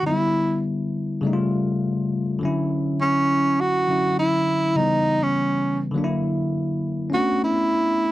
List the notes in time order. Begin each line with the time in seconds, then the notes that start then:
0.03 D3 F#3 E4
0.07 B3 E4
0.11 G3
1.21 C#3 G3 A3
1.27 D#4
1.33 F4
2.39 D3 F#3
2.43 C#4 E4
3.02 C#4
3.61 F#4
3.88 D3 F#3 C#4 E4
4.19 E4
4.75 C#3 G3 D#4
4.79 E3 B3
5.23 C#4
5.92 D3 F#3
5.96 A#3 D4
6.04 E4
7.10 A3 C#4
7.14 B3 D4 F#4
7.44 E4